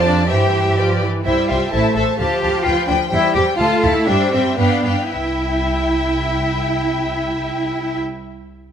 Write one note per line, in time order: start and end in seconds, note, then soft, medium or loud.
0.00 0.29 F2 medium
0.00 0.30 F3 medium
0.00 0.28 C5 medium
0.00 0.30 D5 medium
0.00 0.29 A5 medium
0.05 0.29 D4 medium
0.29 1.05 G2 soft
0.29 0.72 E3 soft
0.29 1.00 G4 medium
0.29 0.77 C5 soft
0.29 0.77 E5 soft
0.29 0.77 G5 soft
0.77 1.00 F3 soft
0.77 1.05 B4 soft
0.77 1.05 D5 soft
0.77 0.87 G5 soft
1.02 1.26 E3 soft
1.25 1.34 C2 soft
1.25 1.70 G3 soft
1.25 1.47 E4 medium
1.25 1.48 C5 soft
1.25 1.48 E5 soft
1.25 1.48 G5 soft
1.49 1.58 C2 soft
1.49 1.73 F4 medium
1.49 1.72 C5 soft
1.49 1.72 E5 soft
1.49 1.72 G5 soft
1.72 1.81 A1 soft
1.72 2.18 A3 soft
1.72 1.96 E4 medium
1.72 1.95 C5 soft
1.72 1.95 E5 soft
1.72 1.95 A5 soft
1.96 2.05 A1 soft
1.96 2.04 A4 medium
1.96 2.17 C5 soft
1.96 2.19 E5 soft
1.96 2.19 A5 soft
2.19 2.28 D2 soft
2.19 3.11 F3 soft
2.19 2.65 G4 medium
2.19 2.41 C5 soft
2.19 2.41 F5 soft
2.19 2.41 A5 soft
2.42 2.51 D2 soft
2.42 2.65 C5 soft
2.42 2.65 F5 soft
2.42 2.65 A5 soft
2.65 2.74 D2 soft
2.65 2.88 F4 medium
2.65 2.85 B4 soft
2.65 2.85 G5 soft
2.65 2.88 G5 soft
2.87 2.97 D2 soft
2.87 2.97 D4 medium
2.87 3.10 B4 soft
2.87 3.08 G5 soft
2.87 3.10 G5 soft
3.10 3.20 E2 medium
3.10 3.57 G3 medium
3.10 3.34 E4 medium
3.10 3.32 C5 soft
3.10 3.33 G5 soft
3.10 3.34 G5 soft
3.33 3.44 E2 medium
3.33 3.43 G4 medium
3.33 3.57 C5 soft
3.33 3.57 G5 soft
3.33 3.58 G5 soft
3.57 3.67 D2 medium
3.57 4.06 A3 medium
3.57 3.82 F4 medium
3.57 3.80 A4 soft
3.57 3.81 F5 soft
3.57 3.81 A5 soft
3.82 3.91 D2 soft
3.82 4.07 E4 medium
3.82 4.06 A4 soft
3.82 4.06 F5 soft
3.82 4.06 A5 soft
4.06 4.15 G2 medium
4.06 4.58 G3 medium
4.06 4.32 D4 medium
4.06 4.31 C5 soft
4.06 4.31 E5 soft
4.06 4.31 G5 soft
4.32 4.40 G2 medium
4.32 4.58 C4 medium
4.32 4.57 C5 soft
4.32 4.57 E5 soft
4.32 4.57 G5 soft
4.58 4.66 G2 soft
4.58 4.84 B3 medium
4.58 5.10 D4 medium
4.58 4.84 B4 soft
4.58 4.84 F5 soft
4.58 4.83 G5 soft
4.84 4.92 G2 soft
4.84 5.11 B4 soft
4.84 5.11 F5 soft
4.84 5.10 G5 soft
5.11 7.98 C2 soft
5.11 7.98 E4 soft
5.11 7.98 E4 medium
5.11 7.99 E5 soft
5.11 7.98 G5 soft